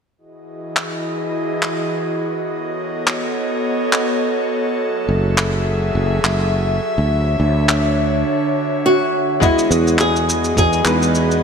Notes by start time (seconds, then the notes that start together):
0.18 E3 E4 F#4 G#4 D#5
0.76 clap
1.63 clap
2.49 B3 A4 C#5 D#5
3.07 clap
3.93 clap
4.80 F#3 G#4 E5
5.09 F#1
5.38 clap
5.95 F#1
6.24 F#1, clap
6.82 D3 D4 C#5
6.98 D2
7.40 D2
7.69 clap
8.86 F#4
9.40 E3 G#3 B3 E4 F#4 G#4 D#5, kick, shaker
9.59 shaker
9.71 E2, shaker
9.87 shaker
9.99 G#4, clap, shaker
10.16 shaker
10.29 shaker
10.44 shaker
10.57 E2 G#4, kick, shaker
10.73 shaker
10.85 E2 G#3 B3 D#4 B4, clap, shaker
11.02 shaker
11.15 shaker
11.31 shaker